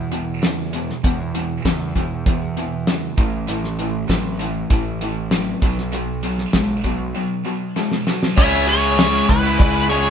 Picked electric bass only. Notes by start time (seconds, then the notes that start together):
Already playing: E2
1.04 E2
1.65 E2
1.96 E2
2.27 E2
3.18 A1
3.49 A1
4.09 A1
4.71 A1
5.62 B1
6.54 B1
6.85 B1
8.38 C#2
9.29 C#2
9.60 C#2